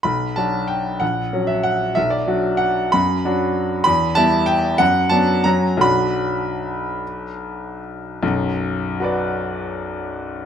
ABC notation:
X:1
M:3/4
L:1/8
Q:1/4=182
K:Bm
V:1 name="Grand piano"
b2 a2 g2 | f3 e f2 | e d3 f2 | b6 |
b2 a2 g2 | f2 a2 ^a2 | b6- | b4 z2 |
z4 [FBd]2- | [FBd]6 |]
V:2 name="Grand piano" clef=bass
B,,,2 [F,DF]4 | ^A,,,2 [F,CF]4 | B,,,2 [F,DF]4 | F,,2 [F,DF]4 |
E,,2 [G,B,E]4 | F,,2 [F,B,D]2 [F,,F,CF]2 | [B,,,F,DF]6- | [B,,,F,DF]6 |
[B,,,F,,]6- | [B,,,F,,]6 |]